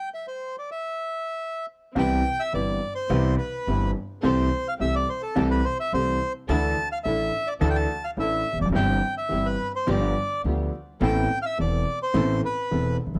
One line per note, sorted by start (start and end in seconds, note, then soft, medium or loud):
0.14 0.26 E5 medium
0.28 0.56 C5 medium
0.59 0.70 D5 medium
0.71 1.66 E5 medium
1.95 2.20 C2 medium
1.95 2.20 C2 loud
1.95 2.20 C3 medium
1.95 2.20 E3 medium
1.95 2.20 B3 medium
1.95 2.21 C4 medium
1.95 2.21 E4 medium
1.95 2.21 G4 medium
1.95 2.21 B4 loud
1.95 2.42 G5 loud
2.40 2.53 E5 loud
2.53 2.77 G1 medium
2.53 2.78 G1 medium
2.53 2.77 G2 medium
2.53 2.77 E3 medium
2.53 2.78 B3 soft
2.53 2.77 C4 medium
2.53 2.77 C4 soft
2.53 2.77 E4 medium
2.53 2.77 G4 medium
2.53 2.77 B4 medium
2.53 2.94 D5 loud
2.95 3.35 C5 loud
3.09 3.34 C2 loud
3.09 3.34 C2 medium
3.09 3.34 C3 loud
3.09 3.34 E3 medium
3.09 3.34 B3 medium
3.09 3.34 C4 medium
3.09 3.34 E4 medium
3.09 3.34 G4 medium
3.09 3.34 B4 loud
3.38 3.91 B4 medium
3.67 3.91 G1 medium
3.67 3.91 G2 medium
3.67 3.91 E3 medium
3.67 3.91 B3 medium
3.67 3.91 C4 medium
3.67 3.91 E4 medium
3.67 3.92 G4 medium
3.67 3.91 B4 medium
4.23 4.47 C2 medium
4.23 4.47 C2 loud
4.23 4.47 C3 medium
4.23 4.47 E3 medium
4.23 4.47 A3 medium
4.23 4.47 C4 medium
4.23 4.47 C4 loud
4.23 4.47 G4 medium
4.23 4.47 A4 loud
4.23 4.68 C5 loud
4.68 4.74 F5 loud
4.79 5.03 C2 medium
4.79 5.04 C2 medium
4.79 5.04 C3 medium
4.79 5.04 E3 medium
4.79 5.04 A3 soft
4.79 5.03 C4 medium
4.79 5.04 C4 soft
4.79 5.03 G4 medium
4.79 5.04 G4 medium
4.79 5.04 A4 medium
4.79 4.95 E5 loud
4.96 5.09 D5 loud
5.09 5.22 C5 medium
5.22 5.48 A4 medium
5.35 5.60 C2 loud
5.35 5.60 C3 loud
5.35 5.60 E3 medium
5.35 5.60 A3 medium
5.35 5.60 C4 medium
5.35 5.60 G4 medium
5.35 5.60 A4 medium
5.51 5.65 B4 loud
5.65 5.78 C5 loud
5.80 5.92 E5 loud
5.93 6.16 C2 medium
5.93 6.17 C2 medium
5.93 6.17 C3 medium
5.93 6.17 E3 medium
5.93 6.17 A3 medium
5.93 6.16 C4 medium
5.93 6.17 C4 medium
5.93 6.17 G4 medium
5.93 6.17 A4 medium
5.93 6.33 C5 loud
6.49 6.73 D2 loud
6.49 6.73 D2 medium
6.49 6.73 D3 medium
6.49 6.73 E3 medium
6.49 6.73 A3 medium
6.49 6.73 D4 loud
6.49 6.73 D4 medium
6.49 6.73 E4 medium
6.49 6.73 A4 loud
6.49 6.73 A4 medium
6.49 6.89 A5 loud
6.92 6.98 F5 loud
7.04 7.29 A1 medium
7.04 7.29 A2 medium
7.04 7.29 E3 medium
7.04 7.29 A3 soft
7.04 7.29 D4 medium
7.04 7.29 E4 medium
7.04 7.29 A4 medium
7.04 7.48 E5 loud
7.47 7.54 D5 loud
7.61 7.85 D2 loud
7.61 7.85 D3 loud
7.61 7.85 E3 medium
7.61 7.85 A3 medium
7.61 7.86 D4 medium
7.61 7.86 E4 medium
7.61 7.85 A4 loud
7.61 7.86 A4 medium
7.61 7.69 A5 loud
7.70 7.77 G5 medium
7.75 8.05 A5 loud
8.04 8.11 F5 loud
8.17 8.42 A1 medium
8.17 8.42 A2 medium
8.17 8.42 E3 medium
8.17 8.42 A3 medium
8.17 8.42 D4 medium
8.17 8.42 E4 medium
8.17 8.42 A4 medium
8.17 8.43 A4 medium
8.17 8.59 E5 loud
8.53 8.60 E1 medium
8.53 8.60 E2 medium
8.60 8.68 F1 medium
8.60 8.67 F2 medium
8.60 8.68 D5 medium
8.66 8.75 F#1 medium
8.66 8.74 F#2 medium
8.72 8.97 G1 medium
8.72 8.99 G1 medium
8.72 8.97 G2 loud
8.72 8.97 E3 medium
8.72 8.97 G3 medium
8.72 8.98 C4 medium
8.72 8.99 C4 medium
8.72 8.99 E4 medium
8.72 8.98 G4 medium
8.72 8.99 G4 loud
8.72 9.15 G5 loud
9.18 9.47 E5 medium
9.29 9.54 G1 medium
9.29 9.55 G1 medium
9.29 9.54 G2 medium
9.29 9.54 E3 medium
9.29 9.54 G3 soft
9.29 9.54 C4 soft
9.29 9.55 C4 medium
9.29 9.55 E4 medium
9.29 9.54 G4 medium
9.29 9.55 G4 medium
9.46 9.72 B4 medium
9.76 9.89 C5 medium
9.87 10.12 G1 loud
9.87 10.11 G2 loud
9.87 10.11 F3 medium
9.87 10.11 B3 medium
9.87 10.12 B3 medium
9.87 10.12 D4 medium
9.87 10.12 F4 medium
9.87 10.11 G4 medium
9.87 10.12 G4 medium
9.87 10.42 D5 loud
10.44 10.69 D2 medium
10.44 10.69 D3 medium
10.44 10.69 F3 medium
10.44 10.69 B3 medium
10.44 10.69 D4 medium
10.44 10.69 F4 soft
10.44 10.69 G4 medium
11.01 11.25 A1 medium
11.01 11.26 A1 loud
11.01 11.26 A2 loud
11.01 11.25 E3 medium
11.01 11.25 B3 medium
11.01 11.26 B3 medium
11.01 11.25 C4 medium
11.01 11.26 C4 medium
11.01 11.25 A4 loud
11.01 11.26 A4 medium
11.01 11.39 G5 loud
11.42 11.58 E5 loud
11.42 11.45 F5 medium
11.57 11.82 E1 medium
11.57 11.83 E1 medium
11.57 11.82 E2 medium
11.57 11.82 E3 medium
11.57 11.82 B3 medium
11.57 11.82 B3 soft
11.57 11.82 C4 medium
11.57 11.83 C4 soft
11.57 11.82 A4 medium
11.57 11.83 A4 medium
11.57 11.99 D5 medium
12.03 12.41 C5 loud
12.14 12.38 A1 medium
12.14 12.39 A1 loud
12.14 12.38 A2 loud
12.14 12.38 E3 medium
12.14 12.38 B3 medium
12.14 12.39 B3 medium
12.14 12.38 C4 medium
12.14 12.39 C4 medium
12.14 12.39 A4 medium
12.45 12.97 B4 medium
12.71 12.95 E1 medium
12.71 12.95 E2 medium
12.71 12.95 E3 medium
12.71 12.95 B3 medium
12.71 12.95 C4 medium
12.71 12.96 C4 medium
12.71 12.95 A4 medium
12.71 12.96 A4 medium
13.06 13.14 F1 medium
13.14 13.19 F#1 medium